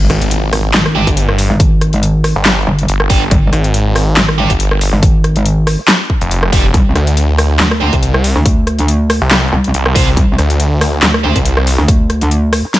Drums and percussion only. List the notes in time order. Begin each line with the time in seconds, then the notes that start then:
0.10 cross-stick, closed hi-hat
0.21 closed hi-hat
0.31 closed hi-hat
0.53 cross-stick, open hi-hat
0.74 snare, clap, closed hi-hat
0.86 cross-stick
1.07 kick, closed hi-hat
1.17 closed hi-hat
1.29 cross-stick
1.38 open hi-hat
1.60 kick, closed hi-hat
1.81 cross-stick, closed hi-hat
1.93 closed hi-hat
2.03 closed hi-hat
2.24 cross-stick, open hi-hat
2.46 snare, clap, closed hi-hat
2.79 closed hi-hat
2.88 closed hi-hat
3.00 cross-stick
3.10 kick, open hi-hat
3.31 kick, closed hi-hat
3.53 cross-stick, closed hi-hat
3.64 closed hi-hat
3.74 closed hi-hat
3.96 cross-stick, open hi-hat
4.17 snare, clap, closed hi-hat
4.29 cross-stick
4.50 kick, closed hi-hat
4.60 closed hi-hat
4.71 cross-stick
4.81 open hi-hat
5.03 kick, closed hi-hat
5.24 cross-stick, closed hi-hat
5.36 closed hi-hat
5.46 closed hi-hat
5.67 cross-stick, open hi-hat
5.88 snare, clap, closed hi-hat
6.10 kick
6.21 closed hi-hat
6.31 closed hi-hat
6.43 cross-stick
6.53 kick, open hi-hat
6.74 kick, closed hi-hat
6.96 cross-stick, closed hi-hat
7.07 closed hi-hat
7.17 closed hi-hat
7.38 cross-stick, open hi-hat
7.60 snare, clap, closed hi-hat
7.71 cross-stick
7.93 kick, closed hi-hat
8.03 closed hi-hat
8.14 cross-stick
8.24 open hi-hat
8.46 kick, closed hi-hat
8.67 cross-stick, closed hi-hat
8.79 closed hi-hat
8.88 closed hi-hat
9.10 cross-stick, open hi-hat
9.31 snare, clap, closed hi-hat
9.64 closed hi-hat
9.74 closed hi-hat
9.86 cross-stick
9.96 kick, open hi-hat
10.17 kick, closed hi-hat
10.38 cross-stick, closed hi-hat
10.50 closed hi-hat
10.60 closed hi-hat
10.81 cross-stick, open hi-hat
11.03 snare, clap, closed hi-hat
11.14 cross-stick
11.36 kick, closed hi-hat
11.45 closed hi-hat
11.57 cross-stick
11.67 open hi-hat
11.88 kick, closed hi-hat
12.10 cross-stick, closed hi-hat
12.21 closed hi-hat
12.31 closed hi-hat
12.53 cross-stick, open hi-hat
12.74 snare, closed hi-hat